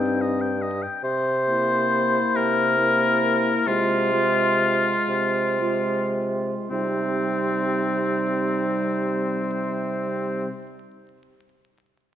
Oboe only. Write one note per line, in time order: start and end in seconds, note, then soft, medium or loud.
0.00 0.23 G5 soft
0.21 0.43 D#5 soft
0.41 0.63 G5 soft
0.62 0.84 D#5 soft
0.82 1.03 G5 soft
1.04 2.38 C5 medium
2.36 3.69 A#4 medium
3.67 6.17 F4 medium
6.70 10.48 C4 soft